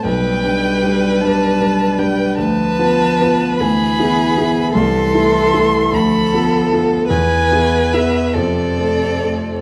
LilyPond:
<<
  \new Staff \with { instrumentName = "Violin" } { \time 6/8 \key g \major \tempo 4. = 51 g''4. a''4 g''8 | \key e \phrygian a''4. b''4. | c'''4. b''4 r8 | gis''4 e''8 d''4. | }
  \new Staff \with { instrumentName = "Violin" } { \time 6/8 \key g \major b'2. | \key e \phrygian b'4. gis'4. | a'4. a'4. | b'4. a'4. | }
  \new Staff \with { instrumentName = "Grand piano" } { \time 6/8 \key g \major b,,8 <g d' b'>8 <g d' b'>8 <g d' b'>8 <g d' b'>8 <g d' b'>8 | \key e \phrygian d,8 <b f' b'>8 <b f' b'>8 d,8 <b e' gis'>8 <b e' gis'>8 | c,8 <a e' a'>8 <a e' a'>8 d,8 <b f' a'>8 <b f' a'>8 | e,8 <b e' gis'>8 <b e' gis'>8 f,8 <a c' a'>8 <a c' a'>8 | }
  \new Staff \with { instrumentName = "Cello" } { \clef bass \time 6/8 \key g \major g2. | \key e \phrygian f4. e4. | e4. f4. | e4. c4. | }
>>